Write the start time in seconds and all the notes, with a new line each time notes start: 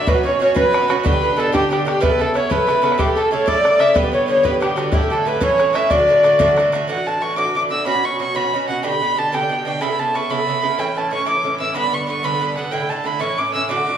0.07 B2 F#3 C#4 F#4 B4, bodhran
0.15 F#3 C#4 F#4
0.23 B2 F#3 C#4 F#4 C#5, bodhran
0.39 B2 F#3 C#4 F#4 C#5
0.54 B2 F#3 C#4 F#4 B4, bodhran
0.63 F#3 C#4 F#4
0.72 B2 F#3 C#4 F#4, bodhran
0.88 B2 F#3 C#4 F#4, bodhran
1.03 B2 D3 D4 G4 B4, bodhran
1.12 D3 D4 G4
1.22 B2 D3 D4 G4, bodhran
1.36 B2 D3 D4 G4 A4
1.52 B2 D3 D4 G4, bodhran
1.61 D3 D4 G4
1.70 B2 D3 D4 G4, bodhran
1.85 B2 D3 D4 G4, bodhran
2.01 C#3 B3 E4 A4 B4, bodhran
2.09 B3 E4 A4
2.18 C#3 B3 E4 A4, bodhran
2.34 C#3 B3 E4 A4 C#5, bodhran
2.50 C#3 B3 E4 A4 B4, bodhran
2.58 B3 E4 A4
2.67 C#3 B3 E4 A4, bodhran
2.82 C#3 B3 E4 A4, bodhran
2.92 bodhran
2.98 C#3 A3 E4 G4 A4, bodhran
3.07 A3 E4 A4
3.15 C#3 A3 E4 A4, bodhran
3.31 C#3 A3 E4 A4 C#5
3.46 C#3 A3 E4 A4 D5, bodhran
3.55 A3 E4 A4
3.64 C#3 A3 E4 A4, bodhran
3.79 C#3 A3 E4 A4 E5, bodhran
3.94 G2 D3 B3 G4 B4, bodhran
4.03 D3 B3 G4
4.12 G2 D3 B3 G4 C#5, bodhran
4.28 G2 D3 B3 G4 C#5
4.43 G2 D3 B3 G4 B4, bodhran
4.51 D3 B3 G4
4.60 G2 D3 B3 G4, bodhran
4.76 G2 D3 B3 F#4 G4, bodhran
4.90 A2 D3 A3 F#4 G4, bodhran
4.94 E4
5.01 D3 A3 E4
5.10 A2 D3 A3 E4 A4, bodhran
5.25 A2 D3 A3 E4 B4
5.41 A2 E3 C#4 E4 C#5, bodhran
5.50 E3 C#4 E4
5.58 A2 E3 C#4 E4, bodhran
5.73 A2 E3 C#4 E4 E5, bodhran
5.90 A2 D3 A3 F#4 D5, bodhran
5.98 D3 A3 F#4
6.07 A2 D3 A3 F#4, bodhran
6.23 A2 D3 A3 F#4, bodhran
6.39 A2 D3 A3 F#4, bodhran
6.48 D3 A3 F#4
6.56 A2 D3 A3 F#4, bodhran
6.72 A2 D3 A3 F#4, bodhran
6.88 A2 E3 D4 F#4 F#5
6.96 E3 D4 F#4
7.06 A2 E3 D4 F#4 A5
7.21 A2 E3 D4 F#4 C#6
7.36 A2 E3 D4 F#4 D6
7.45 E3 D4 F#4
7.54 A2 E3 D4 F#4 D6
7.69 A2 E3 D4 F#4 E6
7.85 B2 F#3 C#4 F#4 B5
7.94 F#3 C#4 F#4
8.04 B2 F#3 C#4 F#4 C#6
8.19 B2 F#3 C#4 F#4 C#6
8.35 B2 F#3 C#4 F#4 B5
8.44 F#3 C#4 F#4
8.53 B2 F#3 C#4 F#4
8.68 B2 F#3 C#4 F#4 F#5
8.83 B2 D3 D4 G4 B5
8.92 D3 D4 G4
9.01 B2 D3 D4 G4
9.16 B2 D3 D4 G4 A5
9.32 B2 D3 D4 G4 G5
9.41 D3 D4 G4
9.49 B2 D3 D4 G4
9.65 B2 D3 D4 G4 G5
9.81 C#3 B3 E4 A4 B5
9.90 B3 E4 A4
9.99 C#3 B3 E4 A4 A5
10.14 C#3 B3 E4 A4 C#6
10.30 C#3 B3 E4 A4 B5
10.39 B3 E4 A4
10.47 C#3 B3 E4 A4
10.62 C#3 B3 E4 A4
10.78 A2 E3 C#4 E4 G5
10.86 E3 C#4 E4
10.95 A2 E3 C#4 E4 A5
11.10 A2 E3 C#4 E4 C#6
11.25 A2 E3 C#4 E4 D6
11.35 E3 C#4 E4
11.43 A2 E3 C#4 E4
11.58 A2 E3 C#4 E4 E6
11.74 G2 D3 B3 D4 B5
11.84 D3 B3 D4
11.92 G2 D3 B3 D4 C#6
12.07 G2 D3 B3 D4 C#6
12.23 G2 D3 B3 D4 B5
12.32 D3 B3 D4
12.40 G2 D3 B3 D4
12.56 G2 D3 B3 D4 F#5
12.71 A2 D3 A3 E4 G5
12.80 D3 A3 E4
12.89 A2 D3 A3 E4 A5
13.04 A2 D3 A3 E4 B5
13.19 A2 E3 C#4 E4 C#6
13.28 E3 C#4 E4
13.38 A2 E3 C#4 E4 D6
13.53 A2 E3 C#4 E4 E6
13.69 A2 D3 A3 F#4 D6
13.77 D3 A3 F#4
13.86 A2 D3 A3 F#4